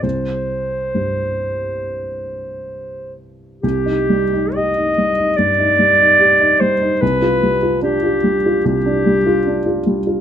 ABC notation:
X:1
M:4/4
L:1/16
Q:1/4=73
K:Cm
V:1 name="Clarinet"
c12- c2 z2 | G4 e4 d6 c2 | =B4 G4 G6 z2 |]
V:2 name="Grand piano"
C,,4 G,,12 | C,, E G, E G E G, E G,, E G, E G E G, E | C,, F G, F D F G, F C,, D G, F D F G, F |]